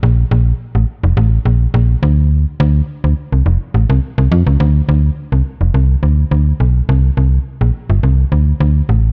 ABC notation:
X:1
M:4/4
L:1/16
Q:1/4=105
K:Dm
V:1 name="FM bass" clef=bass
B,,,2 B,,,2 z A,,, z F,,, A,,,2 B,,,2 B,,,2 D,,2- | D,,2 D,,2 z D,, z C,, F,,, z A,,, C,, z C,, F,, ^C,, | D,,2 D,,2 z C,, z F,,, C,,2 D,,2 D,,2 =B,,,2 | C,,2 C,,2 z B,,, z G,,, C,,2 D,,2 D,,2 A,,,2 |]